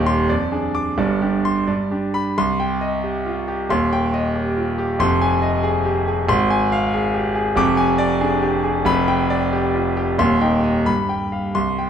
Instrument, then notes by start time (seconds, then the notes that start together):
grand piano
Already playing: D#1 D#2 D#4 G4 D#5
0.06 C6
0.29 F2 D5
0.52 D4 G#4
0.75 D6
0.98 G1 G2 D5
1.21 D4 G4
1.45 C6
1.68 G2 D5
1.91 D4 G4
2.14 B5
2.38 C2 C6
2.60 G5
2.81 D#5
3.04 G4
3.26 F4
3.48 G4
3.69 D#1 D#2 C6
3.93 G5
4.14 D#5
4.36 G4
4.57 F4
4.78 G4
4.99 F1 F2 C6
5.22 G#5
5.42 D#5
5.63 G#4
5.85 G4
6.08 G#4
6.29 G#1 C6
6.50 G#5
6.72 F5
6.94 G#4
7.14 G4
7.35 G#4
7.56 F1 F2 D6
7.77 G#5
7.98 D5
8.21 D4 G#4
8.42 G4
8.64 G#4
8.85 F1 F2 B5
9.08 G5
9.30 D5
9.53 G4
9.75 F4
9.97 G4
10.18 D#1 D#2 C6
10.41 D#4 G5
10.64 D#5
10.86 G2 B5
11.09 G5
11.32 F5
11.55 C2 C6
11.79 G5